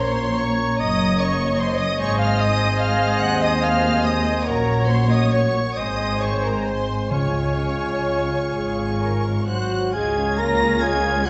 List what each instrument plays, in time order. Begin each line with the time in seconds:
Already playing: double bass section A#1, cello section A#2, french horn section A#3 C#4, viola section C#5, cor anglais C#5, flute A#5
0.00 violin section C5 C6, clarinet C5
0.40 clarinet C#5, violin section C#5 C#6
0.79 double bass section F#1, cello section F#2, french horn section A#3, viola section D#5, clarinet D#5, violin section D#5 D#6
1.19 violin section C#5 C#6, clarinet C#5
1.59 violin section C5 C6, clarinet C5
1.78 violin section D#5 D#6, clarinet D#5
1.98 double bass section G#1, cello section G#2, french horn section G#3 C4, cor anglais C5, violin section C#5 C#6, clarinet C#5, flute G#5
2.19 clarinet F5, violin section F5 F6
2.39 violin section D#5 D#6, clarinet D#5
2.79 violin section F5 F6, clarinet F5
3.18 cello section D#2, double bass section D#2, violin section F#5 F#6, clarinet F#5
3.39 violin section D#5, clarinet D#5
3.44 violin section D#6
3.62 violin section F5 F6, clarinet F5
4.03 violin section D#5 D#6, clarinet D#5
4.45 double bass section A#1, cello section A#2, french horn section F#3 C#4, violin section A#4 A#5, clarinet A#4, viola section C#5, cor anglais C#5, flute F#5
4.88 clarinet C5, violin section C5 C6
5.10 clarinet D#5, violin section D#5 D#6
5.32 violin section C#5 C#6, clarinet C#5
5.76 double bass section G#1, cello section G#2, french horn section G#3 C4, viola section C5, cor anglais C5, violin section D#5 D#6, clarinet D#5, flute G#5
6.19 clarinet C#5, violin section C#5 C#6
6.43 violin section A#4 A#5, clarinet A#4
6.64 violin section C5 C6, clarinet C5
7.10 double bass section C#2, timpani C#3, cello section C#3, french horn section F4, clarinet C#5, violin section C#5 C#6, viola section C#5, cor anglais F5
8.53 double bass section G#1, cello section G#2, viola section G#4
8.99 viola section A#4
9.47 french horn section F#3, trumpet section F#4, viola section C5, flute F#5, violin section F#6
9.93 cello section C#2, double bass section C#2, violin section G#3 C#5 G#6, french horn section G#3, viola section C#4 F4, trumpet section G#4, clarinet C#5, cor anglais F5, flute G#5
10.17 violin section C#4
10.37 french horn section A#3, violin section F4 A#6, trumpet section A#4, flute A#5
10.61 violin section G#4
10.80 french horn section G#3, violin section F4 G#6, trumpet section G#4, flute G#5
11.04 violin section C#4
11.23 french horn section F#3, violin section G#3 F#6, trumpet section F#4, flute F#5